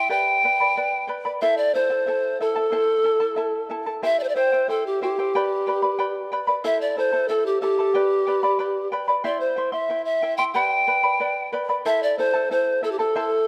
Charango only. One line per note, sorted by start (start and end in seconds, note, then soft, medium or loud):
0.10 0.43 G4 medium
0.10 0.43 B4 medium
0.10 0.43 D5 medium
0.10 0.42 G5 medium
0.10 0.43 B5 medium
0.43 0.60 B4 soft
0.43 0.60 D5 soft
0.43 0.60 G5 medium
0.43 0.59 B5 medium
0.60 0.76 B4 soft
0.60 0.76 D5 soft
0.60 0.76 B5 soft
0.76 1.07 B4 medium
0.76 1.08 D5 medium
0.76 1.06 G5 soft
0.76 1.08 B5 medium
1.07 1.25 B4 medium
1.07 1.24 D5 medium
1.07 1.24 G5 medium
1.07 1.24 B5 medium
1.25 1.42 B4 soft
1.25 1.42 D5 soft
1.25 1.41 B5 medium
1.42 1.74 E4 medium
1.42 1.74 A4 medium
1.42 1.74 C5 medium
1.42 1.73 E5 medium
1.42 1.75 A5 medium
1.74 1.90 E4 medium
1.74 1.90 A4 soft
1.74 1.90 E5 soft
1.74 1.89 A5 soft
1.90 2.06 E4 soft
1.90 2.06 A4 soft
1.90 2.06 A5 soft
2.06 2.40 E4 medium
2.06 2.40 A4 medium
2.06 2.39 E5 medium
2.06 2.40 A5 medium
2.41 2.56 E4 medium
2.41 2.55 A4 medium
2.41 2.55 E5 medium
2.41 2.54 A5 medium
2.56 2.71 E4 soft
2.56 2.72 A4 soft
2.56 2.72 A5 medium
2.72 3.03 E4 medium
2.72 3.04 A4 medium
2.72 3.05 C5 medium
2.72 3.03 E5 medium
2.72 3.04 A5 medium
3.04 3.20 E4 soft
3.04 3.19 A4 soft
3.04 3.20 E5 soft
3.04 3.19 A5 soft
3.20 3.36 E4 soft
3.20 3.36 A4 soft
3.20 3.36 A5 medium
3.36 3.69 E4 medium
3.36 3.69 A4 medium
3.36 3.68 E5 medium
3.36 3.70 A5 medium
3.70 3.87 E4 medium
3.70 3.86 A4 medium
3.70 3.86 E5 medium
3.70 3.85 A5 medium
3.86 4.02 E4 soft
3.86 4.03 A4 soft
3.86 4.03 A5 medium
4.03 4.35 E4 medium
4.03 4.36 G4 medium
4.03 4.35 C5 medium
4.03 4.35 E5 medium
4.03 4.36 G5 medium
4.36 4.52 E4 medium
4.36 4.52 C5 medium
4.36 4.52 E5 medium
4.36 4.51 G5 medium
4.52 4.68 E4 soft
4.52 4.68 C5 soft
4.52 4.69 G5 soft
4.68 5.01 E4 medium
4.68 5.01 C5 medium
4.68 5.00 E5 medium
4.68 5.02 G5 medium
5.02 5.18 E4 medium
5.02 5.18 C5 medium
5.02 5.18 E5 medium
5.02 5.18 G5 medium
5.19 5.35 E4 soft
5.19 5.35 C5 medium
5.19 5.34 G5 medium
5.35 5.67 G4 medium
5.35 5.66 B4 medium
5.35 5.67 D5 medium
5.35 5.66 G5 medium
5.35 5.68 B5 medium
5.67 5.83 B4 medium
5.67 5.82 D5 medium
5.67 5.83 G5 medium
5.67 5.81 B5 medium
5.82 5.97 B4 soft
5.82 5.98 D5 soft
5.82 5.99 B5 soft
5.99 6.31 B4 medium
5.99 6.32 D5 medium
5.99 6.31 G5 medium
5.99 6.32 B5 medium
6.32 6.47 B4 medium
6.32 6.47 D5 medium
6.32 6.48 G5 medium
6.32 6.46 B5 medium
6.47 6.64 B4 soft
6.47 6.64 D5 soft
6.47 6.64 B5 soft
6.64 6.96 E4 medium
6.64 6.97 A4 medium
6.64 6.97 C5 medium
6.64 6.96 E5 medium
6.64 6.97 A5 medium
6.97 7.12 E4 medium
6.97 7.12 A4 soft
6.97 7.12 E5 medium
6.97 7.11 A5 medium
7.12 7.29 E4 soft
7.12 7.29 A4 soft
7.12 7.29 A5 soft
7.29 7.61 E4 medium
7.29 7.61 A4 medium
7.29 7.61 E5 medium
7.29 7.62 A5 medium
7.62 7.79 E4 medium
7.62 7.78 A4 medium
7.62 7.78 E5 medium
7.62 7.77 A5 medium
7.79 7.95 E4 soft
7.79 7.95 A4 medium
7.79 7.95 A5 soft
7.94 8.27 G4 medium
7.94 8.26 B4 medium
7.94 8.27 D5 medium
7.94 8.26 G5 medium
7.94 8.27 B5 medium
8.27 8.43 B4 medium
8.27 8.43 D5 medium
8.27 8.44 G5 medium
8.27 8.42 B5 medium
8.43 8.58 B4 soft
8.43 8.59 D5 soft
8.43 8.59 B5 medium
8.59 8.91 B4 medium
8.59 8.92 D5 medium
8.59 8.91 G5 medium
8.59 8.92 B5 medium
8.92 9.08 B4 medium
8.92 9.08 D5 medium
8.92 9.09 G5 medium
8.92 9.07 B5 medium
9.08 9.24 B4 soft
9.08 9.24 D5 soft
9.08 9.24 B5 soft
9.24 9.56 E4 medium
9.24 9.57 C5 medium
9.24 9.56 E5 medium
9.24 9.55 G5 medium
9.24 9.57 C6 medium
9.56 9.72 E4 soft
9.56 9.72 E5 soft
9.56 9.74 G5 medium
9.56 9.71 C6 medium
9.72 9.89 E4 soft
9.72 9.89 E5 soft
9.72 9.90 C6 soft
9.90 10.22 E4 medium
9.90 10.22 E5 medium
9.90 10.21 G5 medium
9.90 10.22 C6 medium
10.22 10.39 E4 medium
10.22 10.38 E5 medium
10.22 10.39 G5 medium
10.22 10.37 C6 medium
10.38 10.55 E4 soft
10.38 10.55 E5 soft
10.38 10.55 C6 medium
10.54 10.88 G4 medium
10.54 10.86 B4 medium
10.54 10.86 D5 medium
10.54 10.86 G5 medium
10.54 10.87 B5 medium
10.87 11.03 B4 medium
10.87 11.03 D5 medium
10.87 11.04 G5 soft
10.87 11.02 B5 soft
11.03 11.19 B4 soft
11.03 11.19 D5 soft
11.03 11.20 B5 soft
11.20 11.51 B4 medium
11.20 11.52 D5 medium
11.20 11.51 G5 medium
11.20 11.53 B5 medium
11.53 11.69 B4 medium
11.53 11.68 D5 medium
11.53 11.69 G5 medium
11.53 11.68 B5 medium
11.69 11.85 B4 soft
11.69 11.85 D5 soft
11.69 11.85 B5 soft
11.86 12.18 E4 medium
11.86 12.18 A4 medium
11.86 12.18 C5 medium
11.86 12.17 E5 medium
11.86 12.19 A5 medium
12.18 12.34 E4 medium
12.18 12.33 A4 medium
12.18 12.33 E5 soft
12.18 12.32 A5 medium
12.34 12.50 E4 soft
12.34 12.50 A4 soft
12.34 12.50 A5 soft
12.51 12.82 E4 medium
12.51 12.82 A4 medium
12.51 12.81 E5 medium
12.51 12.83 A5 medium
12.83 12.99 E4 medium
12.83 12.98 A4 medium
12.83 12.99 E5 soft
12.83 12.98 A5 medium
12.99 13.15 E4 soft
12.99 13.15 A4 soft
12.99 13.15 A5 medium
13.16 13.47 E4 medium
13.16 13.47 A4 medium
13.16 13.47 C5 medium
13.16 13.47 E5 medium
13.16 13.47 A5 medium